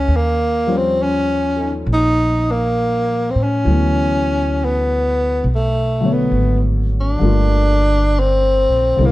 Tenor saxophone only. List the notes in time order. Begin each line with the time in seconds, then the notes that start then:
Already playing: C#4
0.16 A#3
0.77 C4
1.03 C#4
1.93 D#4
2.51 A#3
3.31 C4
3.43 C#4
4.65 B3
5.55 A3
6.13 B3
7.01 D4
8.20 C4
9.06 A#3